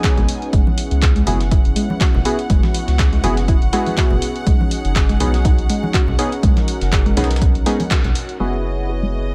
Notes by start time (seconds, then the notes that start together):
Already playing: B3 C#4 D#4 F#4 G#4 G#5
0.04 G#4, kick, snare, clap, closed hi-hat
0.17 G#1 G#3, closed hi-hat, low conga
0.28 closed hi-hat, open hi-hat
0.42 closed hi-hat
0.53 F#1 G#3 B3 E4 F#5, kick, closed hi-hat
0.67 high conga
0.78 closed hi-hat, open hi-hat
0.91 C#2, closed hi-hat
1.02 G#4, kick, snare, clap, closed hi-hat
1.16 G#3, closed hi-hat
1.27 F#1 B3 E4 F#4 G#4, closed hi-hat, open hi-hat, high conga, low conga
1.40 snare, closed hi-hat
1.51 E4, kick, closed hi-hat
1.65 F#1, closed hi-hat
1.76 G#3, closed hi-hat, open hi-hat
1.90 high conga
2.01 F#4, kick, snare, clap, closed hi-hat
2.14 F#1, low conga
2.25 B3 E4 F#4 G#4, closed hi-hat, open hi-hat
2.39 closed hi-hat
2.50 F#1 G#3 F#4, kick, closed hi-hat
2.63 snare, high conga
2.74 closed hi-hat, open hi-hat
2.88 C#2, snare, closed hi-hat
2.99 G#4, kick, snare, clap, closed hi-hat
3.13 G#3, closed hi-hat
3.24 F#1 B3 E4 F#4 G#4, closed hi-hat, open hi-hat, high conga, low conga
3.37 snare, closed hi-hat
3.48 E4, kick, closed hi-hat
3.62 F#1, closed hi-hat
3.73 G#3 B3 E4 F#4 G#4, snare, closed hi-hat, open hi-hat
3.86 open hi-hat, high conga
3.97 F#4, kick, snare, clap, closed hi-hat
4.10 F#1, low conga
4.22 closed hi-hat, open hi-hat
4.36 closed hi-hat
4.47 B1 G#3 C#4 D#4 F#4 G#4, kick, closed hi-hat
4.61 high conga
4.71 closed hi-hat, open hi-hat
4.85 F#1, closed hi-hat
4.96 G#4, kick, snare, clap, closed hi-hat
5.09 G#3, closed hi-hat
5.20 B1 B3 C#4 D#4 G#4, closed hi-hat, open hi-hat, high conga, low conga
5.34 snare, closed hi-hat
5.45 D#4, kick, closed hi-hat
5.58 B1, closed hi-hat
5.70 G#3, closed hi-hat, open hi-hat
5.83 high conga
5.94 F#4, kick, clap, closed hi-hat
6.08 B1, low conga
6.19 B3 C#4 D#4 G#4, closed hi-hat, open hi-hat
6.32 closed hi-hat
6.43 B1 G#3 A#4, kick, closed hi-hat
6.57 snare, closed hi-hat, high conga
6.68 closed hi-hat, open hi-hat
6.81 F#1, snare, closed hi-hat
6.92 G#4, kick, snare, clap, closed hi-hat
7.06 G#3, closed hi-hat
7.17 B1 B3 C#4 D#4 G#4, snare, closed hi-hat, open hi-hat, high conga, low conga
7.24 snare, closed hi-hat
7.31 snare, closed hi-hat
7.36 snare, closed hi-hat
7.42 D#4, kick, closed hi-hat
7.55 B1, closed hi-hat
7.66 G#3 B3 C#4 D#4 G#4, snare, closed hi-hat, open hi-hat
7.80 open hi-hat, high conga
7.91 F#4, kick, snare, clap, closed hi-hat
8.04 B1, closed hi-hat, low conga
8.15 closed hi-hat, open hi-hat
8.29 closed hi-hat
8.40 F#1 G#3 B3 E4 F#4 G#4 B4 C#5 D#5
8.89 G#4
9.03 G#3